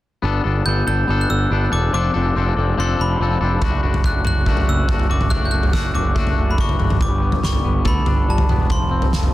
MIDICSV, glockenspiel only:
0, 0, Header, 1, 2, 480
1, 0, Start_track
1, 0, Tempo, 423430
1, 265, Time_signature, 4, 2, 24, 8
1, 10586, End_track
2, 0, Start_track
2, 0, Title_t, "Glockenspiel"
2, 0, Program_c, 0, 9
2, 744, Note_on_c, 0, 91, 79
2, 979, Note_off_c, 0, 91, 0
2, 992, Note_on_c, 0, 91, 86
2, 1374, Note_on_c, 0, 90, 60
2, 1401, Note_off_c, 0, 91, 0
2, 1460, Note_off_c, 0, 90, 0
2, 1474, Note_on_c, 0, 88, 69
2, 1959, Note_on_c, 0, 86, 70
2, 1964, Note_off_c, 0, 88, 0
2, 2188, Note_off_c, 0, 86, 0
2, 2202, Note_on_c, 0, 86, 75
2, 2868, Note_off_c, 0, 86, 0
2, 3173, Note_on_c, 0, 84, 72
2, 3383, Note_off_c, 0, 84, 0
2, 3413, Note_on_c, 0, 83, 57
2, 3846, Note_off_c, 0, 83, 0
2, 4598, Note_on_c, 0, 90, 83
2, 4827, Note_off_c, 0, 90, 0
2, 4840, Note_on_c, 0, 90, 83
2, 5279, Note_off_c, 0, 90, 0
2, 5317, Note_on_c, 0, 88, 73
2, 5791, Note_on_c, 0, 86, 67
2, 5804, Note_off_c, 0, 88, 0
2, 6012, Note_on_c, 0, 90, 83
2, 6034, Note_off_c, 0, 86, 0
2, 6183, Note_on_c, 0, 91, 59
2, 6203, Note_off_c, 0, 90, 0
2, 6247, Note_on_c, 0, 90, 80
2, 6253, Note_off_c, 0, 91, 0
2, 6499, Note_on_c, 0, 88, 69
2, 6502, Note_off_c, 0, 90, 0
2, 6748, Note_off_c, 0, 88, 0
2, 6748, Note_on_c, 0, 86, 66
2, 7376, Note_on_c, 0, 83, 49
2, 7459, Note_off_c, 0, 83, 0
2, 7487, Note_on_c, 0, 85, 71
2, 7659, Note_off_c, 0, 86, 0
2, 7921, Note_off_c, 0, 85, 0
2, 7963, Note_on_c, 0, 86, 80
2, 8440, Note_on_c, 0, 85, 72
2, 8446, Note_off_c, 0, 86, 0
2, 8925, Note_off_c, 0, 85, 0
2, 8926, Note_on_c, 0, 83, 77
2, 9408, Note_off_c, 0, 83, 0
2, 9409, Note_on_c, 0, 81, 73
2, 9883, Note_on_c, 0, 84, 81
2, 9889, Note_off_c, 0, 81, 0
2, 10548, Note_off_c, 0, 84, 0
2, 10586, End_track
0, 0, End_of_file